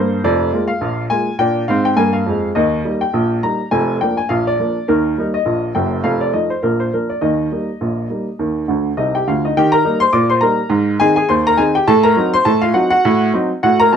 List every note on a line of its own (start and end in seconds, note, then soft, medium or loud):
0.00 0.19 G2 medium
0.00 0.20 A#3 medium
0.00 0.23 C5 medium
0.24 0.49 F1 medium
0.24 0.49 F2 medium
0.24 0.61 D5 loud
0.53 0.69 G#3 medium
0.53 0.70 A#3 medium
0.53 0.70 F4 medium
0.68 1.02 F5 medium
0.81 1.06 A#1 medium
0.81 1.06 A#2 medium
1.10 1.27 G#3 soft
1.10 1.27 A#3 soft
1.10 1.27 F4 soft
1.10 1.34 G#5 medium
1.39 1.63 A#2 medium
1.39 1.64 D4 medium
1.39 1.63 G5 loud
1.68 1.92 G#2 medium
1.68 1.93 C4 medium
1.68 1.85 F5 medium
1.85 1.98 G5 medium
1.97 2.21 G2 medium
1.97 2.22 A#3 medium
1.97 2.14 G#5 loud
2.13 2.47 F5 medium
2.26 2.50 F2 medium
2.26 2.51 G#3 medium
2.55 2.81 D#2 medium
2.55 2.81 D#3 medium
2.55 2.92 D#5 medium
2.85 3.01 G3 medium
2.85 3.01 A#3 soft
2.85 3.02 D#4 medium
3.01 3.35 G5 medium
3.13 3.39 A#1 medium
3.13 3.39 A#2 medium
3.43 3.59 G3 soft
3.43 3.60 A#3 soft
3.43 3.60 D#4 soft
3.43 3.67 A#5 medium
3.71 3.97 F1 medium
3.71 3.97 F2 medium
3.71 3.95 G#5 medium
4.01 4.18 F3 soft
4.01 4.18 A#3 medium
4.01 4.18 D4 soft
4.01 4.17 G5 medium
4.17 4.30 G#5 medium
4.29 4.55 A#1 medium
4.29 4.55 A#2 medium
4.29 4.46 F5 medium
4.47 4.87 D5 medium
4.59 4.76 F3 soft
4.59 4.76 A#3 soft
4.59 4.76 D4 soft
4.88 5.13 D#2 medium
4.88 5.13 D#3 medium
4.88 5.25 A#4 medium
5.18 5.34 G3 soft
5.18 5.35 A#3 soft
5.18 5.35 D#4 medium
5.34 5.68 D#5 medium
5.46 5.71 A#1 medium
5.46 5.71 A#2 medium
5.75 5.99 F#1 medium
5.75 5.99 F#2 medium
5.75 6.03 G5 medium
6.04 6.29 F1 medium
6.04 6.29 F2 medium
6.04 6.21 F5 medium
6.21 6.34 D5 medium
6.33 6.50 F3 soft
6.33 6.50 A3 soft
6.33 6.50 D#4 soft
6.33 6.50 D#5 medium
6.50 6.63 C5 medium
6.63 6.88 A#1 medium
6.63 6.88 A#2 medium
6.63 6.79 A#4 medium
6.80 6.93 C5 medium
6.93 7.09 F3 soft
6.93 7.10 A#3 soft
6.93 7.10 D4 soft
6.93 7.09 A#4 medium
7.10 7.22 D5 medium
7.21 7.47 D#2 medium
7.21 7.47 D#3 medium
7.21 8.94 D#5 medium
7.52 7.68 G3 soft
7.52 7.68 A#3 soft
7.52 7.68 D#4 soft
7.81 8.06 A#1 medium
7.81 8.06 A#2 medium
8.10 8.26 G3 soft
8.10 8.26 A#3 soft
8.10 8.27 D#4 soft
8.39 8.64 D#2 medium
8.39 8.64 D#3 medium
8.68 8.91 D2 medium
8.68 8.90 D3 medium
8.97 9.19 C2 medium
8.97 9.20 C3 medium
8.97 9.13 D#4 soft
8.97 9.14 D#5 medium
9.15 9.27 G4 medium
9.15 9.28 G5 medium
9.27 9.49 D2 medium
9.27 9.49 D3 medium
9.27 9.43 F4 soft
9.27 9.44 F5 medium
9.45 9.57 D#4 medium
9.45 9.57 D#5 medium
9.57 9.82 D#3 medium
9.57 9.73 G4 medium
9.57 9.73 G5 loud
9.72 10.00 A#4 medium
9.72 9.95 A#5 loud
9.85 10.01 G3 soft
9.85 10.01 A#3 medium
9.85 10.01 D#4 medium
10.00 10.14 C5 medium
10.00 10.14 C6 loud
10.13 10.38 A#2 medium
10.13 10.29 D5 medium
10.13 10.30 D6 loud
10.30 10.43 C5 medium
10.30 10.43 C6 medium
10.41 10.58 G3 medium
10.41 10.58 A#3 medium
10.41 10.59 D#4 medium
10.41 10.97 A#4 medium
10.41 10.89 A#5 medium
10.70 10.96 G#2 loud
11.00 11.17 D#3 medium
11.00 11.17 C4 medium
11.00 11.17 D#4 medium
11.00 11.16 G#4 medium
11.00 11.15 G#5 loud
11.16 11.30 G#4 medium
11.16 11.30 G#5 medium
11.29 11.55 D#2 medium
11.29 11.45 C5 medium
11.29 11.46 C6 medium
11.47 11.59 A#4 medium
11.47 11.60 A#5 loud
11.57 11.75 D#3 medium
11.57 11.75 C4 medium
11.57 11.75 D#4 medium
11.57 11.74 G#4 medium
11.57 11.75 G#5 medium
11.75 11.88 G4 medium
11.75 11.89 G5 loud
11.88 12.13 A2 loud
11.88 12.04 A4 loud
11.88 12.05 A5 loud
12.03 12.32 A#4 medium
12.03 12.27 A#5 loud
12.16 12.33 F#3 medium
12.16 12.34 C4 medium
12.16 12.34 D#4 medium
12.34 12.47 C5 medium
12.34 12.47 C6 loud
12.45 12.71 A2 medium
12.45 12.62 A4 medium
12.45 12.62 A5 loud
12.62 12.75 F4 medium
12.62 12.75 F5 loud
12.74 12.90 F#3 medium
12.74 12.91 C4 medium
12.74 12.91 D#4 medium
12.74 12.90 F#4 medium
12.74 12.89 F#5 medium
12.90 13.31 F#4 medium
12.90 13.31 F#5 loud
13.05 13.30 A2 loud
13.34 13.50 F#3 medium
13.34 13.50 C4 medium
13.34 13.51 D#4 medium
13.63 13.88 A2 medium
13.63 13.79 F#4 medium
13.63 13.79 F#5 loud
13.80 13.92 A#4 medium
13.80 13.92 A#5 loud
13.93 13.96 F#3 medium
13.93 13.96 C4 medium
13.93 13.96 D#4 medium
13.93 13.96 A5 medium